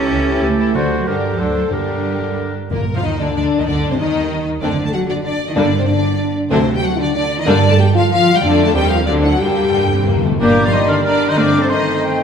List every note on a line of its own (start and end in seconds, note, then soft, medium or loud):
0.00 0.43 E3 medium
0.00 0.42 C#4 medium
0.00 0.25 E4 medium
0.00 0.26 G4 medium
0.00 0.42 G4 medium
0.00 0.71 G4 medium
0.00 0.27 A4 medium
0.00 0.42 A4 medium
0.00 0.71 A4 medium
0.11 0.38 C#2 medium
0.27 0.57 E4 medium
0.27 0.58 G4 soft
0.27 0.58 A4 soft
0.43 0.70 C#2 medium
0.43 0.76 E3 medium
0.43 0.59 A3 medium
0.43 0.74 G4 medium
0.43 0.77 A4 medium
0.58 0.74 E4 medium
0.58 0.75 G4 soft
0.58 0.74 A4 soft
0.74 1.04 D2 medium
0.74 1.04 D3 medium
0.74 1.06 D3 medium
0.74 0.83 A3 medium
0.74 1.04 D4 medium
0.74 1.09 F#4 medium
0.74 1.04 F#4 soft
0.74 1.04 F#4 medium
0.74 1.05 C5 medium
0.74 1.09 C5 medium
0.99 1.07 F#3 medium
1.06 1.39 G2 medium
1.06 1.38 D3 medium
1.06 1.15 G3 medium
1.06 1.37 D4 medium
1.06 1.38 D4 medium
1.06 1.38 G4 soft
1.06 1.40 G4 soft
1.06 1.39 A#4 medium
1.06 1.41 A#4 soft
1.06 1.39 A#4 soft
1.31 1.39 F3 medium
1.38 1.71 D2 medium
1.38 1.71 D3 soft
1.38 1.53 F#3 medium
1.38 1.70 D4 soft
1.38 1.71 D4 soft
1.38 1.72 A4 soft
1.38 1.71 C5 medium
1.38 1.71 C5 soft
1.38 1.72 C5 soft
1.54 1.61 F#3 medium
1.71 2.18 G2 medium
1.71 2.53 G2 soft
1.71 2.54 D3 soft
1.71 2.37 G3 medium
1.71 2.53 D4 soft
1.71 2.53 G4 soft
1.71 2.55 G4 soft
1.71 2.55 A#4 soft
1.71 2.53 A#4 soft
2.71 2.94 A#1 medium
2.71 3.16 G2 medium
2.71 2.79 A#2 medium
2.71 2.79 A#3 medium
2.71 2.80 A#3 medium
2.71 2.83 A#3 medium
2.71 2.94 A#4 medium
2.95 3.04 F2 medium
2.95 2.98 F3 medium
2.95 2.99 F4 medium
2.95 3.04 F4 medium
2.95 3.04 F5 medium
3.03 3.19 D#2 medium
3.03 3.19 D#3 medium
3.03 3.10 D#3 medium
3.03 3.19 D#4 medium
3.03 3.20 D#4 medium
3.03 3.20 D#5 medium
3.19 3.34 D2 medium
3.19 3.34 D3 medium
3.19 3.27 D3 medium
3.19 3.34 D4 medium
3.19 3.35 D5 medium
3.35 3.43 D2 medium
3.35 3.59 D3 medium
3.35 3.44 D3 medium
3.35 3.59 D4 medium
3.35 3.44 D5 medium
3.58 3.63 D#2 medium
3.58 3.67 D#3 medium
3.58 3.67 D#4 medium
3.58 3.68 D#4 medium
3.58 3.67 D#5 medium
3.67 3.91 D2 medium
3.67 4.12 G2 medium
3.67 3.91 D3 medium
3.67 3.91 D4 medium
3.67 3.91 D5 medium
3.90 3.94 C2 medium
3.90 3.99 C3 medium
3.90 3.99 C4 medium
3.90 3.95 C4 medium
3.90 3.99 C5 medium
3.98 4.45 D#2 medium
3.98 4.46 D#3 medium
3.98 4.45 D#3 medium
3.98 4.46 D#4 medium
3.98 4.46 D#5 medium
4.61 4.88 F#1 medium
4.61 4.77 D3 medium
4.61 4.84 D3 medium
4.61 4.77 A3 medium
4.61 4.77 C4 medium
4.61 4.72 D4 medium
4.61 4.77 D4 medium
4.61 4.84 D5 medium
4.86 4.94 A3 medium
4.86 4.94 A4 medium
4.86 4.89 A5 medium
4.93 5.09 F#3 medium
4.93 5.10 F#4 medium
4.93 4.99 F#5 medium
5.08 5.23 D3 medium
5.08 5.22 D4 medium
5.08 5.16 D5 medium
5.24 5.32 D3 medium
5.24 5.35 D4 medium
5.24 5.48 D5 medium
5.48 5.56 D#3 medium
5.48 5.53 D#4 medium
5.48 5.57 D#5 medium
5.55 5.83 G1 medium
5.55 6.01 G2 medium
5.55 5.80 D3 medium
5.55 5.71 D3 medium
5.55 5.71 G3 medium
5.55 5.71 A#3 medium
5.55 5.66 D4 medium
5.55 5.71 D4 medium
5.55 5.79 D5 medium
5.79 5.88 C3 medium
5.79 5.83 C4 medium
5.79 5.88 C5 medium
5.86 6.34 D3 medium
5.86 6.34 D4 medium
5.86 6.35 D5 medium
6.50 6.78 D2 medium
6.50 6.73 C3 medium
6.50 6.66 D3 medium
6.50 6.96 D3 medium
6.50 6.66 F#3 medium
6.50 6.66 A3 medium
6.50 6.61 C4 medium
6.50 6.66 D4 medium
6.50 6.74 C5 medium
6.74 6.83 G3 medium
6.74 6.83 G4 medium
6.74 6.83 G5 medium
6.83 6.99 F#3 medium
6.83 6.99 F#4 medium
6.83 7.00 F#5 medium
6.98 7.05 D3 medium
6.98 7.14 D4 medium
6.98 7.14 D5 medium
7.15 7.38 D3 medium
7.15 7.26 D4 medium
7.15 7.38 D5 loud
7.39 7.47 D#3 medium
7.39 7.43 D#4 medium
7.39 7.47 D#5 medium
7.46 7.74 G2 medium
7.46 7.92 G2 medium
7.46 7.61 D3 medium
7.46 7.71 D3 medium
7.46 7.62 G3 medium
7.46 7.61 A#3 medium
7.46 7.62 D4 medium
7.46 7.70 D4 medium
7.46 7.71 D5 loud
7.71 7.79 A3 medium
7.71 7.75 A4 medium
7.71 7.79 A5 medium
7.79 7.95 G3 medium
7.79 7.86 G4 medium
7.79 7.95 G5 medium
7.95 8.01 F3 medium
7.95 8.02 F4 medium
7.95 8.11 F5 medium
8.10 8.34 F3 medium
8.10 8.34 F4 loud
8.10 8.35 F5 loud
8.34 8.43 G3 medium
8.34 8.42 G4 medium
8.34 8.43 G5 medium
8.42 8.72 F2 medium
8.42 8.72 D3 medium
8.42 8.67 D3 medium
8.42 8.72 A3 medium
8.42 8.73 A3 medium
8.42 8.67 D4 medium
8.42 8.73 D4 medium
8.42 8.67 D5 loud
8.66 8.75 A3 medium
8.66 8.74 A4 medium
8.66 8.75 A5 medium
8.74 9.07 D#2 medium
8.74 9.07 D#3 medium
8.74 9.07 G3 medium
8.74 8.91 G3 medium
8.74 9.06 C4 medium
8.74 8.81 G4 medium
8.74 8.90 G5 loud
8.90 9.07 F3 medium
8.90 8.98 F4 medium
8.90 9.07 F5 medium
9.06 9.41 D2 medium
9.06 9.39 D3 medium
9.06 9.23 D3 medium
9.06 9.40 F#3 medium
9.06 9.40 C4 medium
9.06 9.24 D4 medium
9.06 9.40 D4 medium
9.06 9.13 D5 medium
9.24 9.40 F#3 medium
9.24 9.41 F#4 medium
9.24 9.40 F#5 medium
9.40 9.48 G2 soft
9.40 10.23 G2 medium
9.40 10.23 D3 medium
9.40 10.25 G3 medium
9.40 9.71 A#3 medium
9.40 9.71 D4 medium
9.40 10.24 G4 medium
9.40 10.24 G5 medium
9.49 9.55 G2 soft
9.56 9.63 G2 soft
9.64 9.70 G2 soft
9.71 9.77 G2 soft
9.71 9.81 A#3 medium
9.78 9.85 G2 soft
9.86 9.92 G2 medium
9.91 10.00 G2 medium
9.91 10.07 C4 medium
10.01 10.07 G2 medium
10.07 10.15 G2 medium
10.07 10.24 A#3 medium
10.16 10.22 G2 medium
10.24 10.30 G2 medium
10.24 10.41 A3 medium
10.31 10.39 G2 medium
10.40 10.68 G1 medium
10.40 10.64 A#2 medium
10.40 11.39 G3 medium
10.40 10.63 A#3 medium
10.40 10.56 A#3 medium
10.40 11.33 D4 medium
10.40 10.56 D4 medium
10.40 10.64 G4 medium
10.40 11.33 A#4 medium
10.40 10.64 A#4 medium
10.40 11.38 D5 medium
10.40 10.75 D6 medium
10.65 10.73 F3 medium
10.65 10.73 F4 medium
10.65 10.69 D5 medium
10.65 10.74 F5 medium
10.72 10.89 D#3 medium
10.72 10.89 D#4 medium
10.72 10.80 C5 medium
10.72 10.90 D#5 medium
10.72 11.05 C6 medium
10.88 11.04 D3 medium
10.88 11.05 D4 medium
10.88 10.96 A#4 medium
10.88 11.04 D5 medium
11.05 11.29 D3 medium
11.05 11.29 D4 medium
11.05 11.31 A#4 medium
11.05 11.29 D5 loud
11.05 11.40 A#5 medium
11.29 11.37 D#3 medium
11.29 11.37 D#4 medium
11.29 11.39 C5 medium
11.29 11.37 D#5 medium
11.37 11.63 G1 medium
11.37 11.61 D3 medium
11.37 11.52 A3 medium
11.37 12.23 A3 medium
11.37 11.52 C4 medium
11.37 12.23 C4 medium
11.37 11.61 D4 medium
11.37 12.23 A4 medium
11.37 11.63 A#4 medium
11.37 12.23 C5 medium
11.37 11.61 D5 medium
11.37 11.72 D6 medium
11.61 11.69 C3 medium
11.61 11.69 C4 medium
11.61 11.70 A4 medium
11.61 11.65 C5 medium
11.69 12.16 D#3 medium
11.69 12.16 D#4 medium
11.69 12.16 C5 medium
11.69 12.16 D#5 medium
11.69 12.03 C6 medium
12.02 12.23 G5 medium